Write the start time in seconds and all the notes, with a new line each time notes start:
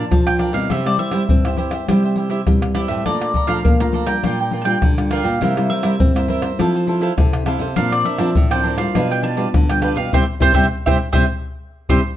Already playing: F3 A#3 D4 A5
0.11 F3, pandeiro, tamborim, shaker, surdo
0.27 F3 A#3 D4 G5, pandeiro, tamborim, shaker
0.38 D4 A#4 D5 F5, pandeiro, tamborim, shaker
0.53 B2 G3 C4 E4 A#4 D5 F5, pandeiro, shaker
0.69 C3 E4 G4 C5 E5, pandeiro, tamborim, shaker, surdo
0.86 G3 C4 E4 D5, pandeiro, tamborim, shaker
0.98 E4 G4 C5 E5, pandeiro
1.11 G3 E4 G4 C5 E5, pandeiro, tamborim, shaker
1.29 G2 C4, pandeiro, shaker, surdo
1.45 G3 C4 E4 G4 C5 E5, pandeiro, tamborim, shaker
1.57 E4 G4 C5 E5, pandeiro
1.71 G4 C5 E5, pandeiro, tamborim, shaker
1.88 C3 G3 C4 E4 G4 C5 E5, pandeiro, tamborim, shaker, surdo
2.04 G4 C5 E5, pandeiro, shaker
2.16 E4 G4 C5 E5, pandeiro
2.30 E4 G4 C5 E5, pandeiro, shaker
2.47 G2 G3 C4 E4, pandeiro, tamborim, shaker, surdo
2.62 pandeiro, tamborim, shaker
2.75 G3 C4 E4 G4 C5 D5 E5, pandeiro, tamborim
2.88 A2 G4 C5 E5, pandeiro, shaker
3.06 A#2 A3 D4 F4 A4 D5 F5 A#5, pandeiro, tamborim, shaker, surdo
3.21 pandeiro, tamborim, shaker
3.34 A4 D5 F5 A#5, pandeiro, surdo
3.47 F3 A3 D4 F4 A4 D5 F5 A#5, pandeiro, tamborim, shaker
3.64 F3 A#3, pandeiro, shaker, surdo
3.80 A3 D4 F4 D5 F5 A#5, pandeiro, tamborim, shaker
3.93 A4 D5 F5 A#5, pandeiro, shaker
4.06 G3 D4 F4 D5 F5 G5 A#5, pandeiro, tamborim, shaker
4.24 A#2 F4 A#4 D5 G5, pandeiro, tamborim, shaker, surdo
4.39 A#4 D5 G5, pandeiro, shaker
4.51 F4 A#4 D5 G5, pandeiro, shaker
4.62 G3 D4 G5 A5, pandeiro, shaker
4.66 F4 A#4 D5 G5
4.82 A#2 D3, pandeiro, tamborim, shaker, surdo
4.97 G3 D4 F4, pandeiro, tamborim, shaker
5.11 F4 A#4 D5 F5 G5, pandeiro, tamborim
5.24 A#2 A#4 D5 G5, pandeiro, shaker
5.41 C3 G3 A#3 E4 A#4 C5 E5, pandeiro, tamborim, shaker, surdo
5.57 G3 A#3 E4, pandeiro, tamborim, shaker
5.69 E4 A#4 C5 E5, pandeiro, shaker
5.83 G3 E4 A#4 C5 E5, pandeiro, tamborim, shaker
6.00 G2 C4, pandeiro, shaker, surdo
6.16 G3 A#3 E4 A#4 C5 E5, pandeiro, tamborim, shaker
6.28 E4 A#4 C5 E5, pandeiro
6.42 A#4 C5 E5, pandeiro, tamborim, shaker
6.59 F3 C4 E4 A4 C5 F5, pandeiro, tamborim, shaker, surdo
6.75 A4 C5 F5, pandeiro, shaker
6.87 C4 E4 A4 C5 F5, pandeiro, shaker
7.01 E4 A4 C5 F5, pandeiro, shaker
7.18 C3 C4 E4 A4, pandeiro, tamborim, shaker, surdo
7.33 pandeiro, tamborim, shaker
7.46 C4 E4 A4 C5 F5, pandeiro, tamborim, shaker
7.59 C3 A4 C5 F5, pandeiro, shaker
7.76 A#2 F3 C4 D4 A#4 C5 D5 F5, pandeiro, tamborim, shaker, surdo
7.92 D5, pandeiro, tamborim, shaker
8.05 D4 A#4 C5 D5 E5, pandeiro, shaker
8.18 F3 C4 D4 A#4 C5 D5, pandeiro, tamborim, shaker
8.35 A2 F3, pandeiro, shaker, surdo
8.51 F3 C4 D4 A#4 C5 D5 G5, pandeiro, tamborim, shaker
8.64 D4 A#4 C5 D5, pandeiro
8.78 G3 D4 F4 A#4 C5 D5 F5, pandeiro, tamborim, shaker
8.95 B2 D4 G4 B4 F5, pandeiro, tamborim, shaker, surdo
9.10 G4 B4 F5 G5, pandeiro, shaker
9.22 D4 G4 B4 F5 A5, pandeiro, shaker
9.36 G3 D4 F4 G4 B4 F5, pandeiro, shaker
9.54 B2 D3, pandeiro, tamborim, shaker, surdo
9.69 G3 D4 F4 G5, pandeiro, tamborim, shaker
9.82 D4 G4 B4 F5, pandeiro, tamborim, shaker
9.96 B2 G4 B4 F5, pandeiro, shaker
10.12 C3 G3 C4 E4 G4 C5 E5 G5, surdo
10.40 C3 G3 C4 E4 G4 C5 E5 G5, surdo
10.54 C3 G3 C4 E4 G4 C5 E5 G5, surdo
10.86 C3 G3 C4 E4 G4 C5 E5 G5, surdo
11.13 C3 G3 C4 E4 G4 C5 E5 G5, surdo
11.89 C3 G3 C4 E4 G4 C5 E5 G5, surdo